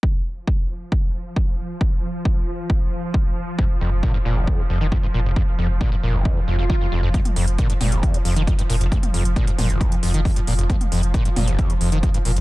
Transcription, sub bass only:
X:1
M:4/4
L:1/16
Q:1/4=135
K:Cphr
V:1 name="Sub bass" clef=bass
z16 | z16 | z2 F,,, F,,, z2 F,,, F,,, z2 F,,, F,,, z2 F,,, F,,, | z2 F,,, F,,, z2 F,,, F,,, z2 F,,, F,,, z2 F,,, F,,, |
z2 F,,, F,,, z2 F,,, F,,, z2 F,,, F,,, z2 F,,, F,,, | z2 F,,, F,,, z2 F,,, F,,, z2 F,,, F,,, z2 F,,, F,,, | z2 F,,, F,,, z2 F,,, F,,, z2 F,,, F,,, z2 F,,, F,,, |]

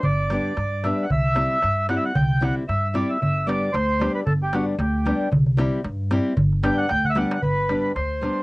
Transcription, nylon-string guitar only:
X:1
M:2/4
L:1/8
Q:"Swing 16ths" 1/4=114
K:G
V:1 name="Nylon-string guitar"
z [G,B,DG] z [G,B,DG] | z [G,CEG] z [G,CEG] | z [G,CEG] z [G,CEG] | z [G,B,DG] z [G,B,DG] |
z [G,B,DG] z [G,B,DG] | z [G,CEG] z [G,CEG] | z [G,B,DG] z [G,B,DG] | z [G,B,DG] z [G,B,DG] |]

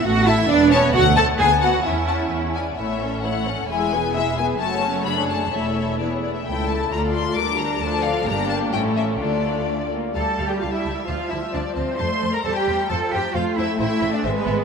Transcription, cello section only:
X:1
M:2/4
L:1/16
Q:1/4=132
K:Amix
V:1 name="Cello section"
F2 E2 D2 C2 | [K:A] F2 A2 G2 F2 | E6 z2 | A,,8 |
E,,8 | F,,8 | E,,6 z2 | [K:Dm] ^C,,4 D,,4 |
D,,4 D,,4 | G,,4 A,,4 | D,6 z2 | A3 G F E3 |
F2 E2 D2 C2 | c3 B A G3 | A2 G2 F2 E2 | E3 D C =B,3 |]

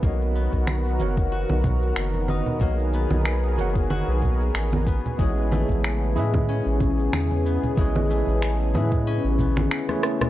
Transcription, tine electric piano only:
X:1
M:4/4
L:1/16
Q:"Swing 16ths" 1/4=93
K:B
V:1 name="Tine electric piano"
[FAcd]6 [FAcf]8- [FAcf]2 | [FAcd]6 [FAcf]8 z2 | [EGBc]6 [EGBe]8- [EGBe]2 | [EGBc]6 [EGBe]6- [EGBe] [=A,EGBc]3 |]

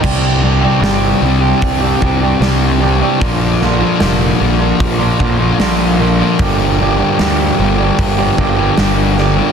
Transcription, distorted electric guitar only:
X:1
M:4/4
L:1/16
Q:1/4=76
K:Cmix
V:1 name="Distorted electric guitar" clef=bass
[C,G,C]2 [C,G,C] [G,C] [C,G,C]2 [C,G,C]3 [G,C] [C,G,C] [G,C] [C,G,C]2 [C,G,C] [G,C] | [B,,F,B,]2 [B,,F,B,] [F,B,] [B,,F,B,]2 [B,,F,B,]3 [F,B,] [B,,F,B,] [F,B,] [B,,F,B,]2 [B,,F,B,] [F,B,] | [G,,D,G,]2 [G,,D,G,] [D,G,] [G,,D,G,]2 [G,,D,G,]3 [D,G,] [G,,D,G,] [D,G,] [G,,D,G,]2 [G,,D,G,] [D,G,] |]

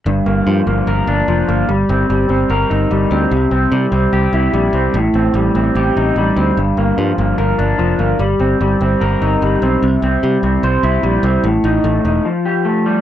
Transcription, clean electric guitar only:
X:1
M:4/4
L:1/8
Q:1/4=148
K:Gm
V:1 name="Clean electric guitar"
G,, B, F, B, B D F, B, | G, C G, C B E G, C | C, C G, C G =E G, C | A,, C G, C G E G, C |
G,, B, F, B, B D F, B, | G, C G, C B E G, C | C, C G, C c =E G, C | A,, E A, E F, G A, G, |]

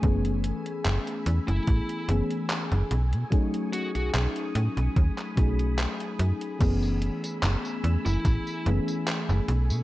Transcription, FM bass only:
X:1
M:4/4
L:1/16
Q:"Swing 16ths" 1/4=73
K:F#dor
V:1 name="FM bass" clef=bass
F,,,2 z2 F,,, z E,, F,,, A,,, z F,,, z2 F,,, B,,, B,, | z3 B,,, B,,, z A,, B,,, D,, z B,,,2 z2 F,, z | F,,,2 z2 F,,, z E,, F,,, A,,, z F,,, z2 F,,, B,,, B,, |]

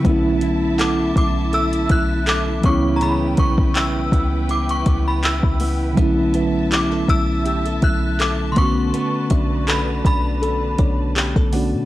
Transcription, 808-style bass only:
X:1
M:4/4
L:1/16
Q:"Swing 16ths" 1/4=81
K:Bm
V:1 name="808-style bass" clef=bass
B,,,6 B,,,4 B,,,4 C,,2- | C,,2 B,,,4 C,,4 C,,3 C,,3 | B,,,6 B,,,4 B,,,4 B,,,2 | z2 B,,,4 B,,,4 B,,,3 B,,,2 B,, |]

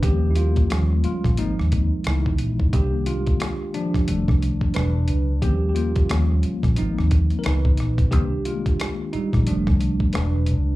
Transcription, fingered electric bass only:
X:1
M:4/4
L:1/16
Q:"Swing 16ths" 1/4=89
K:Cm
V:1 name="Fingered electric bass" clef=bass
E,,4 E,,2 z B,,, A,,, E,,2 z _D,,2 B,,,2 | C,,4 z4 F,,, C,,2 z =E,,,2 _D,,2 | E,,4 E,,2 z B,,, A,,, E,,2 z _D,,2 B,,,2 | C,,4 z3 B,,, F,,, C,,2 z =E,,,2 _D,,2 |]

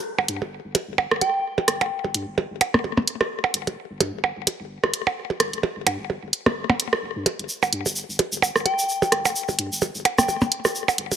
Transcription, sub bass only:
X:1
M:4/4
L:1/16
Q:"Swing 16ths" 1/4=129
K:Fmix
V:1 name="Sub bass" clef=bass
z G,,, G,, G,,,2 G,,, z G,,,2 G,,, z4 G,,, F,,, | z G,,, G,, G,,,2 G,,, z G,,,2 G,,, z4 G,,, F,,, | z G,,, G,, G,,,2 G,,, z G,,,2 G,,, z4 G,,, F,,, | z G,,, G,, G,,,2 G,,, z G,,,2 G,,, z2 F,,, G,, z G,,, |
z G,,, G,, G,,,2 G,,, z G,,,2 G,,, z4 G,,, F,,, | z G,,, G,, G,,,2 G,,, z G,,,2 G,,, z4 G,,, F,,, |]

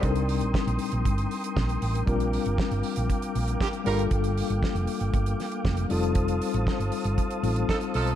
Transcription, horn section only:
X:1
M:4/4
L:1/16
Q:1/4=118
K:Bb
V:1 name="Horn section"
[E,CA] z12 z3 | z12 [D,B,G] z [G,FB]2 | z16 | z12 [F,EA] z [F,EA]2 |]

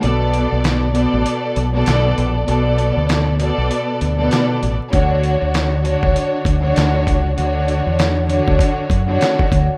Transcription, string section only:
X:1
M:4/4
L:1/16
Q:"Swing 16ths" 1/4=98
K:Bm
V:1 name="String section"
[B,,B,Ad]6 [B,,B,Ad]4- [B,,B,Ad] [B,,B,Ad]4- [B,,B,Ad] | [B,,B,Ad]6 [B,,B,Ad]4- [B,,B,Ad] [B,,B,Ad]4 z | [D,DFc]6 [D,DFc]4- [D,DFc] [D,DFc]4- [D,DFc] | [D,DFc]6 [D,DFc]4- [D,DFc] [D,DFc]4 z |]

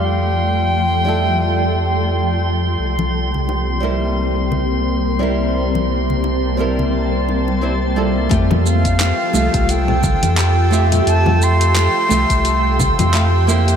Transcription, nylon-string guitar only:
X:1
M:4/4
L:1/8
Q:"Swing 16ths" 1/4=87
K:Cmix
V:1 name="Nylon-string guitar"
[G,FGA]3 [G,EFA]4 z | z3 [G,CEB]4 [G,CEB]- | [G,CEB]3 [G,CEB]3 [G,CEc] [G,EFA] | [A,FGg]3 [A,FGf]4 [A,FGe]- |
[A,FGe]3 [A,FGe]3 [A,FGf] [B,EGc] |]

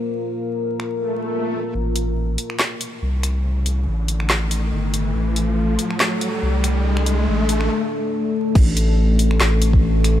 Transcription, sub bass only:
X:1
M:4/4
L:1/8
Q:"Swing 16ths" 1/4=141
K:Aphr
V:1 name="Sub bass" clef=bass
z8 | A,,,3 z3 C,,2- | C,,2 A,,,4 G,,,2 | A,,,3 z3 C,,2- |
C,,2 A,,,2 z4 | A,,,4 A,,,4 |]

